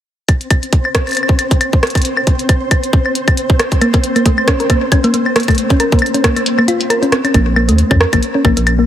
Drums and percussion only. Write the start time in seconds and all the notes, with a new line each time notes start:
0.28 kick, closed hi-hat, claves
0.41 closed hi-hat
0.51 kick, closed hi-hat, claves
0.63 closed hi-hat
0.73 kick, closed hi-hat
0.85 claves
0.95 kick, cross-stick, closed hi-hat
1.07 closed hi-hat, claves
1.09 closed hi-hat
1.11 closed hi-hat, claves
1.13 closed hi-hat
1.15 closed hi-hat
1.17 closed hi-hat, claves
1.23 claves
1.29 kick
1.39 closed hi-hat, claves
1.51 kick, closed hi-hat
1.61 closed hi-hat, claves
1.73 kick
1.83 cross-stick, closed hi-hat
1.87 closed hi-hat
1.90 closed hi-hat
1.95 kick, closed hi-hat, claves
1.97 closed hi-hat
2.02 closed hi-hat
2.05 closed hi-hat
2.17 claves
2.27 kick, closed hi-hat
2.39 closed hi-hat
2.49 kick, closed hi-hat, claves
2.71 kick, closed hi-hat, claves
2.84 closed hi-hat
2.93 kick
3.06 claves
3.15 closed hi-hat
3.28 kick, closed hi-hat, claves
3.37 closed hi-hat
3.50 kick
3.60 cross-stick, closed hi-hat, claves
3.72 kick, closed hi-hat
3.82 closed hi-hat, claves
3.94 kick, closed hi-hat
4.04 closed hi-hat
4.16 closed hi-hat, claves
4.26 kick, closed hi-hat
4.38 claves
4.48 kick, cross-stick, closed hi-hat
4.60 closed hi-hat
4.70 kick, closed hi-hat, claves
4.92 kick, closed hi-hat, claves
5.04 closed hi-hat
5.14 closed hi-hat
5.26 claves
5.36 cross-stick, closed hi-hat
5.40 closed hi-hat
5.43 closed hi-hat
5.48 kick, closed hi-hat, claves
5.51 closed hi-hat
5.55 closed hi-hat
5.58 closed hi-hat
5.70 kick, closed hi-hat
5.80 closed hi-hat, claves
5.92 kick, closed hi-hat
5.99 closed hi-hat, claves
6.06 closed hi-hat
6.14 closed hi-hat
6.24 kick, cross-stick, closed hi-hat
6.37 closed hi-hat, claves
6.46 closed hi-hat
6.59 claves
6.68 closed hi-hat
6.81 closed hi-hat
6.90 closed hi-hat, claves
7.03 closed hi-hat
7.12 cross-stick, closed hi-hat
7.25 closed hi-hat, claves
7.34 kick, closed hi-hat, claves
7.56 claves
7.69 closed hi-hat
7.78 closed hi-hat
7.91 kick, claves
8.01 cross-stick
8.13 kick, closed hi-hat, claves
8.23 closed hi-hat
8.45 kick, claves
8.57 closed hi-hat
8.67 closed hi-hat, claves